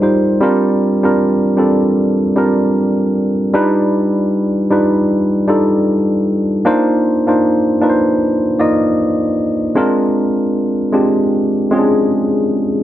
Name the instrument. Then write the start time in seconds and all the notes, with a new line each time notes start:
tine electric piano
Already playing: G3 D#4 F4 A#4 C5
0.02 G3 D#4 F4 C5
0.41 G3 C4 D4 F4 A#4
1.03 G3 C4 D4 F4 A#4
1.57 G3 C4 D4 F4 A4
2.36 G3 C4 D4 F4 A#4
3.54 G3 D4 D#4 F4 B4
4.70 G3 D4 D#4 F4 B4
5.48 G3 D4 D#4 F4 A4
6.65 A#3 D4 D#4 F4 C5
7.27 A#3 D4 D#4 F4 C5
7.81 A#3 D4 D#4 F4 B4
7.90 C5
8.59 A#3 D#4 F4 D5 D#5
9.75 G#3 C4 D4 F4 A#4
10.93 G#3 C4 D4 F4 G4
11.71 G#3 C4 C#4 F4 G#4
11.78 D4